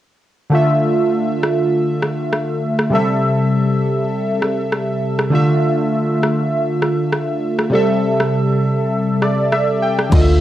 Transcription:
0.50 D3 A3 F4
0.55 E5
1.43 cross-stick
2.02 cross-stick
2.32 cross-stick
2.79 cross-stick
2.90 C3 G3 A4
2.95 E5
4.42 cross-stick
4.72 cross-stick
5.19 cross-stick
5.30 D3 A3 F4
5.35 E5
6.23 cross-stick
6.82 cross-stick
7.12 cross-stick
7.59 cross-stick
7.70 C3 G3 A4
7.75 E5
8.20 cross-stick
9.22 D5, cross-stick
9.52 E5, cross-stick
9.82 G5
9.99 cross-stick
10.10 D2 D3 A3 F4, kick, crash, shaker
10.15 D#5
10.21 E5

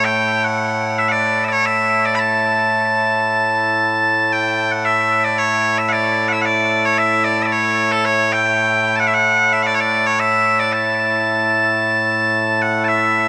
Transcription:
Already playing: A2 A3 E4
0.05 G5
0.44 F#5
0.98 E5
1.08 D5 F#5
1.44 E5
1.49 C#5 D5
1.66 E5
2.05 D5
2.15 B5
2.19 A5
4.33 G5
4.71 F#5
4.85 E5
5.25 D5
5.38 C#5
5.78 E5
5.89 D5 F#5
6.28 F#5
6.32 E5
6.41 F#5
6.45 D5
6.85 C#5
6.98 E5
7.24 D5
7.42 D5 E5
7.52 C#5
7.92 A4
8.05 C#5
8.32 G5
8.96 F#5 A5
9.07 E5
9.14 F#5
9.53 E5
9.62 F#5
9.66 D5
9.74 C#5
9.80 D5
10.06 C#5
10.20 E5
10.60 D5
10.73 A5
12.62 F#5
12.84 E5 A5

